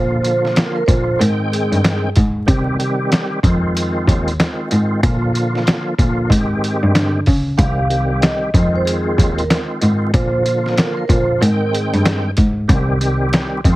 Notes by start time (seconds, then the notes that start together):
Already playing: A#2 D3 F3 A#3 F4 C5
0.23 D3 F3 A#3 F4, closed hi-hat
0.45 snare
0.56 A#4, snare, closed hi-hat
0.76 A#4
0.86 A#2 D3 F3 A#3 F4 C5, kick, closed hi-hat
1.19 G#2 D#3 G#3 C4 A#4 G5, closed hi-hat
1.52 G#4, closed hi-hat
1.72 G2, closed hi-hat
1.84 snare, closed hi-hat
2.16 G#2, kick, closed hi-hat
2.46 C3 D#3 G3 C4 G4, kick, closed hi-hat
2.79 D#3 G3 C4 G4, closed hi-hat
3.12 snare, closed hi-hat
3.43 F2 D#3 G#3 C4 F4, kick, closed hi-hat
3.77 closed hi-hat
4.08 D#2, kick, closed hi-hat
4.28 closed hi-hat
4.40 D#3 G#3 C4 F4, snare, closed hi-hat
4.70 G#2 D#3 G#3 C4 F4, closed hi-hat
5.03 A#2 D3 F3 A#3 F4, kick, closed hi-hat
5.33 D3 F3 A#3 F4, closed hi-hat
5.55 snare
5.67 snare, closed hi-hat
5.98 A#2 D3 F3 A#3 F4, kick, closed hi-hat
6.29 G#2 D#3 G#3 C4 G4, kick, closed hi-hat
6.64 closed hi-hat
6.83 G2
6.95 D3, snare, closed hi-hat
7.26 C#3, kick, open hi-hat
7.57 C2 D#3 G3 C4 G4 F5, kick, closed hi-hat
7.89 D#3 G3 C4 G4, closed hi-hat
8.22 D#5, snare, closed hi-hat
8.54 F2 D#3 G#3 C4 F4, kick, closed hi-hat
8.76 C5
8.85 G#4, closed hi-hat
9.18 D#2, kick, closed hi-hat
9.38 A#4, closed hi-hat
9.50 D#3 G#3 C4 F4, snare, closed hi-hat
9.80 G#2 D#3 G#3 C4 F4, closed hi-hat
10.13 A#2 D3 F3 A#3 F4 C5, kick, closed hi-hat
10.44 D3 F3 A#3 F4, closed hi-hat
10.66 snare
10.77 A#4, snare, closed hi-hat
10.97 A#4
11.08 A#2 D3 F3 A#3 F4 C5, kick, closed hi-hat
11.40 G#2 D#3 G#3 C4 A#4 G5, closed hi-hat
11.73 G#4, closed hi-hat
11.94 G2, closed hi-hat
12.05 snare, closed hi-hat
12.37 G#2, kick, closed hi-hat
12.68 C2 D#3 G3 C4 G4, kick, closed hi-hat
13.00 D#3 G3 C4 G4, closed hi-hat
13.33 snare, closed hi-hat
13.64 F2 D#3 G#3 C4 F4, kick, closed hi-hat